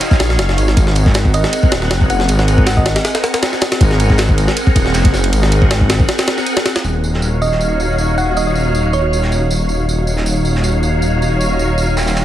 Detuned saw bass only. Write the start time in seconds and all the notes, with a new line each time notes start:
0.20 A#1
0.39 F#1
0.58 G#1
0.77 G#1
1.34 G#1
1.72 D#1
1.91 F#1
2.29 G#1
2.86 G#1
3.81 G#1
4.38 G#1
4.76 D#1
4.95 F#1
5.32 G#1
5.89 G#1
6.84 D#1